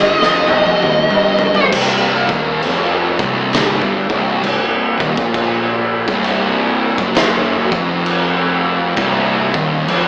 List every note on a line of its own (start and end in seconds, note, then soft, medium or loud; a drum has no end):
0.00 0.19 G1 loud
0.00 0.19 G2 loud
0.00 1.68 D#5 loud
0.19 0.48 F1 loud
0.19 0.47 F2 loud
0.19 snare medium
0.48 0.65 C2 loud
0.48 0.64 C3 loud
0.48 high tom medium
0.65 0.82 F1 loud
0.65 0.81 F2 loud
0.65 high tom medium
0.82 1.09 D#1 medium
0.82 1.09 D#2 loud
0.82 mid tom medium
1.10 1.69 G1 medium
1.10 1.72 G2 loud
1.10 mid tom medium
1.39 floor tom loud
1.55 floor tom medium
1.72 2.25 C1 medium
1.72 2.28 C2 loud
1.72 kick loud
1.72 crash loud
1.72 crash medium
2.29 2.61 D#1 loud
2.29 2.63 D#2 loud
2.29 kick loud
2.62 3.16 F1 loud
2.62 3.18 F2 loud
2.62 crash medium
3.19 3.78 C1 loud
3.19 3.80 C2 loud
3.19 kick loud
3.53 snare loud
3.53 crash medium
3.81 4.08 G1 loud
3.81 4.08 G2 loud
3.81 kick loud
4.09 4.42 C1 loud
4.09 4.43 C2 loud
4.09 kick loud
4.44 4.97 C1 medium
4.44 4.89 C2 medium
4.44 crash medium
5.00 5.17 D#1 medium
5.00 5.16 D#2 loud
5.00 kick loud
5.17 6.04 A#1 loud
5.17 6.07 A#2 loud
5.17 kick loud
5.34 kick loud
5.34 crash medium
6.08 6.95 C1 loud
6.08 6.98 C2 loud
6.08 kick loud
6.24 crash medium
6.98 7.69 F#1 loud
6.98 7.71 F#2 loud
6.98 kick loud
7.15 snare loud
7.15 crash medium
7.71 8.94 F1 loud
7.71 8.96 F2 loud
7.71 kick loud
8.06 crash medium
8.96 9.50 C1 loud
8.96 9.52 C2 loud
8.96 kick loud
8.96 crash medium
9.54 9.86 D#1 loud
9.54 9.88 D#2 loud
9.54 kick loud
9.88 10.08 F1 loud
9.88 10.08 F2 loud
9.88 crash medium